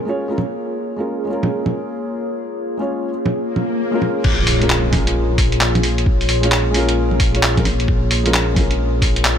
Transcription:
Already playing: A#3 F4 G#4 C#5
0.05 G#3 C#4 F4
0.09 C#5
0.28 G#3 C#4 F4 A#4
0.38 low bongo
0.96 G#3 C#4 F4 A#4
1.25 G#3 C#4
1.30 F4 A#4
1.43 low bongo
1.66 low bongo
2.77 G#3 C#4 F4
2.81 C#5
3.26 low bongo
3.33 swell
3.56 low bongo
3.91 G#3 C#4 F4
3.95 A#4
4.02 low bongo
4.24 A#1, kick, crash, impact
4.47 open hi-hat
4.59 G#3 C#4 F4, closed hi-hat
4.63 A#4
4.70 clap
4.89 G#3 C#4, kick, open hi-hat, low bongo
4.94 F4 A#4
5.07 closed hi-hat
5.38 kick, open hi-hat
5.52 closed hi-hat
5.61 clap
5.75 closed hi-hat, low bongo
5.83 open hi-hat
5.98 closed hi-hat
6.06 kick
6.21 open hi-hat
6.29 open hi-hat
6.41 G#3 C#4 F4, closed hi-hat
6.45 C#5
6.52 clap
6.70 G#3 C#4, open hi-hat
6.76 F4 A#4
6.89 closed hi-hat
7.11 low bongo
7.20 kick, open hi-hat
7.32 G#3 C#4 F4, closed hi-hat
7.36 C#5
7.43 clap
7.55 G#3 C#4 F4, kick, closed hi-hat, low bongo
7.59 A#4
7.65 open hi-hat, low bongo
7.80 closed hi-hat
7.88 kick
8.11 open hi-hat
8.24 G#3 C#4 F4 A#4, closed hi-hat
8.34 clap
8.52 G#3 C#4
8.56 F4 A#4, kick, open hi-hat, low bongo
8.71 closed hi-hat
9.02 kick, open hi-hat
9.16 closed hi-hat
9.25 clap

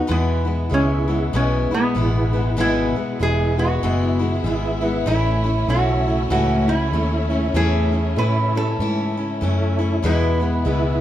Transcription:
0.07 E2 B2 E3 G#3 B3 E4
0.11 B3
0.45 E3 G#3 B3 E4
0.69 C#2 E3 G#3 B3 E4 G#4 B4 E5
0.74 C#4
1.08 E3 G#3 B3 E4
1.33 B1 E2 B2 E3 G#3 B3 C#4 E4
1.71 E3 G#3 B3 E4, muted fingered electric bass stroke
1.95 A1 E3 G#3 B3 E4 G#4 B4 F#5
2.33 E3 G#3 B3 E4
2.57 G#1 E2 B2 E3 G#3 B3 E4
2.95 E3 G#3 B3 E4, muted fingered electric bass stroke
3.19 E1 E3 G#3 B3 E4 G#4 B4 D#5
3.58 E3 G#3 B3 E4 F#4
3.83 F#1 E2 B2 E3 G#3 B3 E4
4.19 E3 G#3 B3 E4
4.41 G#1 E3 E4 G#4 B4 E5
4.45 G#3 B3 E4
4.81 E3 G#3 B3 E4
5.06 A1 A2 C#3 E3 A3 C#4 E4
5.44 A3 C#4 E4
5.67 B1 E3 A3 C#4 E4 F#4 A4 C#5 E5
6.07 A3 C#4 E4
6.30 C#2 A2 E3 A3 C#4 E4 F#4
6.68 A3 C#4 E4
6.92 D#2 A3 C#4 E4 A4 C#5 E5
7.30 A3 C#4 E4
7.54 E2 A2 E3 A3 C#4 E4 G#4
7.92 A3 C#4 E4
8.16 A2 E3 A3 C#4 E4 A4 B4 C#5 E5
8.55 A3 C#4 E4 A4
8.79 G#2 E3 C#4 E4
9.17 C#4 E4
9.41 F#2 E3 A3 C#4 E4 A4 C#5 E5
9.79 A3 C#4 E4
10.03 E2 B2 E3 G#3 B3 E4
10.40 E3 G#3 B3 E4
10.65 C#2 E3 G#3 B3 E4 G#4 B4 E5

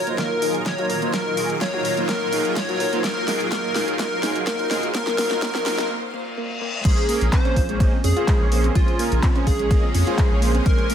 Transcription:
Already playing: A#2 D#3 F#3 A#3 F4 A#4 C#5
0.07 F#3 A#3 D#4 F4 C5, closed hi-hat
0.18 F#3 A#3 D#4 F4 A#4, kick, snare, closed hi-hat
0.42 F#3 D#4 F4 G#4, open hi-hat
0.55 closed hi-hat
0.66 F4 C#5, kick, snare, closed hi-hat
0.78 F#3 D#4 F4 F#4 A#4, closed hi-hat
0.90 A#4, open hi-hat
1.02 F#3 A#3 D#4 F4 C5, closed hi-hat
1.13 F#3 D#4 F4 A#4, kick, snare, closed hi-hat
1.37 F#3 D#4 F4 G#4, open hi-hat
1.50 closed hi-hat
1.61 F4 C#5, kick, snare, closed hi-hat
1.74 F#3 D#4 F4 F#4 A#4
1.85 A#4, open hi-hat
1.97 F#3 A#3 D#4 F4 C5, closed hi-hat
2.09 F#3 A#3 D#4 F4 A#4, kick, snare, closed hi-hat
2.33 F#3 D#4 F4 G#4, open hi-hat
2.45 closed hi-hat
2.56 F4 C#5, kick, snare, closed hi-hat
2.69 F#3 D#4 F4 F#4 A#4, closed hi-hat
2.80 A#4, open hi-hat
2.93 F#3 A#3 D#4 F4 C5, closed hi-hat
3.04 F#3 A#3 D#4 F4 A#4 C5, kick, snare, closed hi-hat
3.28 F#3 D#4 F4 G#4, snare, open hi-hat
3.40 closed hi-hat
3.52 F#3 A#3 D#4 F4 A#4, kick, snare, closed hi-hat
3.75 F#3 D#4 F4 G#4, snare, open hi-hat
3.88 closed hi-hat
3.99 F#3 A#3 D#4 F4 A#4, kick, snare, closed hi-hat
4.23 F#3 D#4 F4 G#4, snare, open hi-hat
4.36 closed hi-hat
4.47 A#3 A#4, kick, snare, closed hi-hat
4.59 closed hi-hat
4.71 F#3 D#4 F4 G#4, snare, open hi-hat
4.83 closed hi-hat
4.94 F#3 A#3 D#4 F4 A#4, kick, snare, closed hi-hat
5.07 snare, closed hi-hat
5.18 F#3 A#3 D#4 F4 A#4, snare, open hi-hat
5.31 snare, closed hi-hat
5.42 F#3 A#3 D#4 F4 A#4, kick, snare, closed hi-hat
5.55 snare
5.66 F#3 A#3 D#4 F4 A#4, snare, open hi-hat
5.78 snare, closed hi-hat
5.90 A#3, reverse cymbal
6.14 A#3
6.37 A#3
6.61 A#3
6.85 A#1 C#3 G#3 A#3 C#4 F4 G#4 C5, kick, closed hi-hat, crash, ride
6.98 closed hi-hat
7.09 A#3 C#4 G#4 A#4, open hi-hat
7.21 A#1, closed hi-hat
7.33 C4 C5, kick, clap, closed hi-hat, ride
7.45 A#3 C#4 G#4 C5, closed hi-hat
7.56 A#1 F4, kick, open hi-hat
7.69 G#3 A#3 C#4 G#4 C#5, closed hi-hat
7.80 A#3 C#4 G#4 D#5, kick, closed hi-hat, ride
7.93 C4
8.04 F2 C#4 G#4, open hi-hat
8.16 A#3 C#4 F4 G#4 C5, closed hi-hat
8.28 G#3, kick, clap, closed hi-hat, ride
8.40 A#1 A#3 C#4 G#4 C#5
8.52 A#3 C#4 G#4 C5, open hi-hat
8.64 C4, closed hi-hat
8.75 A#1 G#3 A#3 C#4 F4 G#4 C5, kick, closed hi-hat, ride
8.88 closed hi-hat
8.99 A#3 C#4 G#4 A#4, open hi-hat
9.12 A#1, closed hi-hat
9.23 C4, kick, clap, closed hi-hat, ride
9.35 A#3 C#4 G#4 C5, closed hi-hat
9.47 A#1 F4 G#4, kick, open hi-hat
9.59 G#3 A#3 C#4 G#4 C#5, closed hi-hat
9.71 A#3 C#4 G#4 D#5, kick, closed hi-hat, ride
9.83 C4
9.94 F2 C#4, open hi-hat
10.07 A#3 C#4 F4 G#4 C5, closed hi-hat
10.18 G#3, kick, clap, closed hi-hat, ride
10.31 A#1 A#3 C#4 G#4 C#5
10.42 A#3 C#4 G#4 C5, open hi-hat
10.55 C4, closed hi-hat
10.66 A#1 G#3 A#3 C#4 G#4 A#4 C5, kick, closed hi-hat, ride
10.78 closed hi-hat
10.90 A#3 C#4 G#4 A#4, open hi-hat

